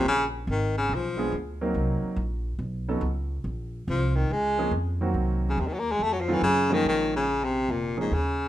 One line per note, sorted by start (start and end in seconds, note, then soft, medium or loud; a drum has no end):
0.05 0.47 A#1 medium
0.05 0.24 C#3 medium
0.47 0.89 G#1 medium
0.47 0.76 D#3 medium
0.77 0.96 C#3 medium
0.89 1.31 B1 medium
0.95 1.35 F3 medium
1.17 1.31 F3 medium
1.17 1.31 G#3 medium
1.17 1.31 B3 medium
1.17 1.31 D4 medium
1.17 1.32 G#4 medium
1.32 1.74 D2 medium
1.61 2.15 F#3 medium
1.61 2.15 A#3 medium
1.61 2.15 C4 medium
1.61 2.16 D#4 medium
1.61 2.16 A#4 medium
1.74 2.01 C2 medium
2.03 muted upright bass stroke soft
2.16 2.58 A#1 medium
2.59 3.01 B1 medium
2.88 3.01 F#3 medium
2.88 3.01 B3 medium
2.88 3.01 C#4 medium
2.88 3.01 D#4 medium
2.88 3.02 A4 medium
3.01 3.43 C#2 medium
3.44 3.86 A#1 medium
3.88 4.29 C2 loud
3.88 4.17 F3 medium
4.16 4.34 D#3 medium
4.30 4.71 C#2 medium
4.30 4.73 G#3 medium
4.58 4.71 F3 medium
4.58 4.71 G#3 medium
4.58 4.71 A#3 medium
4.58 4.71 C#4 medium
4.58 4.72 G#4 medium
4.71 5.13 F2 medium
5.01 5.55 D#3 medium
5.01 5.55 F#3 medium
5.01 5.55 A#3 medium
5.01 5.55 C4 medium
5.01 5.55 F#4 medium
5.14 5.56 C2 medium
5.49 5.62 C#3 medium
5.57 5.98 D#2 medium
5.57 5.69 C3 medium
5.67 5.75 D#3 medium
5.74 5.80 F#3 medium
5.79 5.93 A#3 medium
5.92 6.04 G#3 medium
5.99 6.41 F2 medium
5.99 6.14 A3 loud
6.13 6.22 F#3 medium
6.21 6.35 F3 medium
6.28 6.41 D#3 medium
6.28 6.41 F#3 medium
6.28 6.41 A3 medium
6.28 6.41 C4 medium
6.28 6.41 F4 medium
6.33 6.41 E3 medium
6.41 6.83 F#2 medium
6.41 6.75 C#3 loud
6.70 6.86 D#3 loud
6.70 7.24 F3 medium
6.70 7.24 G#3 medium
6.70 7.24 A#3 medium
6.70 7.24 C#4 medium
6.70 7.24 G#4 medium
6.85 7.66 A#1 medium
6.85 7.13 D#3 medium
7.16 7.46 C#3 medium
7.44 7.73 C3 medium
7.69 8.09 F1 medium
7.69 7.98 A#2 medium
7.97 8.15 G#2 medium
7.97 8.10 F3 medium
7.97 8.11 A#3 medium
7.97 8.10 C#4 medium
7.97 8.10 G#4 medium
8.11 8.48 D#2 medium
8.11 8.48 C#3 loud